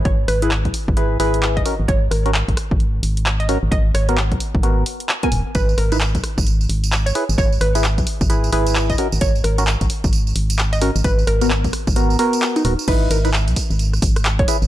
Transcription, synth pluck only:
X:1
M:4/4
L:1/16
Q:"Swing 16ths" 1/4=131
K:G#m
V:1 name="Synth pluck"
c z B2 z8 z d2 z | c z A2 z8 z d2 z | d z c2 z8 z g2 z | B z A2 z8 z c2 z |
c z B2 z8 z d2 z | c z A2 z8 z d2 z | B z A2 z8 z D2 z | B z A2 z8 z c2 z |]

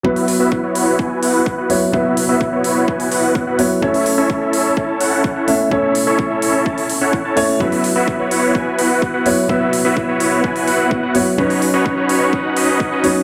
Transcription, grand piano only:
X:1
M:4/4
L:1/8
Q:1/4=127
K:Alyd
V:1 name="Grand piano"
[F,B,EB]6- [F,B,EB] [F,B,Ec] | [F,B,EB]6- [F,B,EB] [F,B,Ec] | [A,CEc]6- [A,CEc] [A,CEe] | [A,CEc]6- [A,CEc] [A,CEc] |
[F,B,EB]6- [F,B,EB] [F,B,Ec] | [F,B,EB]6- [F,B,EB] [F,B,Ec] | [F,CDB]6- [F,CDB] [F,CDc] |]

